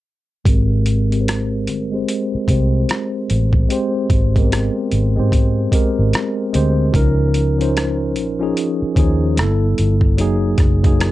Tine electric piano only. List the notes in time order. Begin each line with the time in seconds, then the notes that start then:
0.45 G#3 C4 G4 A#4
1.11 G#3 C4 G4 A#4
1.21 C5
1.92 G#3 C4 G4 C5
2.47 G#3 C4 G4 C5
3.69 G#3 C4 G4 C5
4.35 G#3 B3 G4 A#4
4.43 C4
5.16 G#3 C4 G4 C5
5.71 G#3 C4 G4 A#4
6.53 G#3 C4 G4 C5
6.93 F3 C#4 D#4 A#4
7.59 F3 C#4 D#4 C5
8.39 F3 C#4 D#4 G#4
8.96 F3 C#4 D#4 G#4
9.36 G3 A#3 E4 A4
9.44 B3
10.17 F#3 A#3 D#4 G#4
10.83 F#3 A#3 D#4 G#4
11.00 F4 A#4